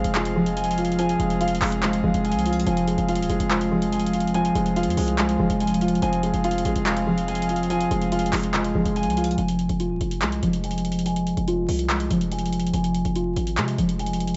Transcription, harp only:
0.00 1.40 F4 medium
0.00 0.56 G#5 loud
0.15 1.81 G#3 medium
0.36 2.02 F3 medium
0.57 0.98 G#5 loud
0.99 2.24 G#5 loud
1.41 3.08 F4 medium
1.83 2.72 G#3 loud
2.04 2.72 F3 medium
2.25 2.66 G#5 loud
2.67 3.92 G#5 loud
3.08 4.76 F4 medium
3.50 5.17 G#3 medium
3.71 5.38 F3 medium
3.92 4.34 G#5 medium
4.34 5.60 G#5 loud
4.76 6.44 F4 loud
5.18 6.07 G#3 medium
5.39 6.07 F3 medium
5.60 6.02 G#5 loud
6.02 7.28 G#5 loud
6.44 8.12 F4 medium
6.86 8.53 G#3 medium
7.07 8.74 F3 medium
7.28 7.70 G#5 loud
7.70 8.96 G#5 loud
8.12 9.79 F4 medium
8.54 9.43 G#3 loud
8.75 9.43 F3 medium
8.96 9.38 G#5 loud
9.38 10.63 G#5 loud
9.80 11.47 F4 medium
10.22 11.88 G#3 medium
10.43 12.09 F3 medium
10.64 11.05 G#5 medium
11.06 12.31 G#5 loud
11.48 13.15 F4 medium
11.90 12.79 G#3 medium
12.11 12.79 F3 medium
12.32 12.73 G#5 medium
12.74 13.99 G#5 loud
13.16 14.37 F4 medium
13.57 14.37 G#3 medium
13.78 14.37 F3 medium
13.99 14.37 G#5 loud

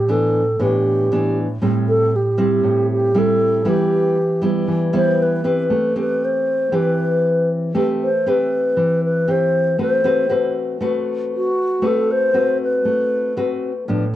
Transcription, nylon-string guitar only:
0.00 0.57 A2 medium
0.08 0.41 E3 soft
0.08 0.42 B3 soft
0.08 0.42 D4 medium
0.60 1.59 A2 medium
0.60 1.07 E3 soft
0.60 1.07 B3 soft
0.60 1.07 D4 medium
1.12 1.46 E3 medium
1.12 1.45 B3 medium
1.12 1.46 D4 medium
1.62 2.61 A2 medium
1.62 2.12 G3 medium
1.62 2.13 C4 soft
1.62 2.13 E4 soft
2.38 3.11 G3 medium
2.38 3.11 C4 medium
2.38 3.11 E4 medium
2.64 3.63 A2 medium
3.15 3.62 G3 medium
3.15 3.62 C4 soft
3.15 3.62 E4 medium
3.65 4.65 E3 medium
3.65 4.16 G3 medium
3.65 4.16 B3 soft
3.65 4.17 E4 medium
4.42 4.89 G3 medium
4.42 4.89 B3 soft
4.42 4.90 E4 medium
4.68 5.68 E3 medium
4.93 5.40 G3 medium
4.93 5.41 B3 medium
4.93 5.41 E4 medium
5.44 5.94 C4 medium
5.44 5.95 G4 medium
5.44 6.43 B4 medium
5.70 6.70 A3 medium
5.95 6.68 C4 medium
5.95 6.69 G4 medium
6.72 7.72 E3 medium
6.72 7.70 C4 soft
6.72 7.71 G4 medium
6.72 7.71 B4 medium
7.75 8.74 A3 medium
7.75 8.07 C4 soft
7.75 8.08 G4 medium
7.75 8.08 B4 medium
8.26 9.24 C4 soft
8.26 9.24 G4 soft
8.26 9.25 B4 medium
8.77 9.76 E3 medium
9.28 9.77 C4 medium
9.28 9.77 G4 soft
9.78 10.78 A3 medium
9.78 10.00 C4 soft
9.78 10.00 F#4 medium
9.78 10.01 B4 medium
10.04 10.26 C4 medium
10.04 10.26 F#4 medium
10.04 10.26 B4 medium
10.29 10.77 C4 medium
10.29 10.77 F#4 soft
10.29 10.77 B4 medium
10.81 11.81 A3 medium
10.81 11.50 C4 soft
10.81 11.50 F#4 soft
10.81 11.50 B4 medium
11.82 12.82 A3 medium
11.82 12.30 C4 medium
11.82 12.30 F#4 soft
11.82 12.30 B4 medium
12.34 13.32 C4 medium
12.34 13.32 F#4 medium
12.34 13.33 B4 medium
12.85 13.85 A3 medium
13.36 13.71 C4 soft
13.36 13.71 F#4 soft
13.36 13.71 B4 medium
13.88 14.16 A2 medium
13.88 14.03 F3 soft
13.88 14.03 B3 soft
13.88 14.04 D4 medium

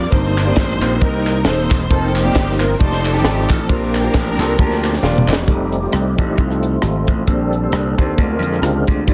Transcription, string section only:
0.14 0.99 D#4 medium
0.14 1.03 C5 loud
1.02 1.46 D#4 medium
1.02 1.46 A#4 loud
1.47 1.88 D#4 medium
1.47 1.91 C5 loud
1.92 2.77 C4 medium
1.92 2.15 D#4 medium
1.92 2.17 A4 loud
2.16 2.77 A#3 medium
2.16 2.76 D#4 medium
2.16 2.58 G4 loud
2.62 2.81 A#4 medium
2.80 3.14 D#4 medium
2.80 3.49 A4 medium
2.80 3.13 C5 loud
3.15 3.65 C4 medium
3.15 3.65 D#4 medium
3.15 3.50 G4 medium
3.50 3.70 A4 medium
3.69 5.24 D4 medium
3.69 5.24 G4 medium
3.69 5.29 A#4 loud

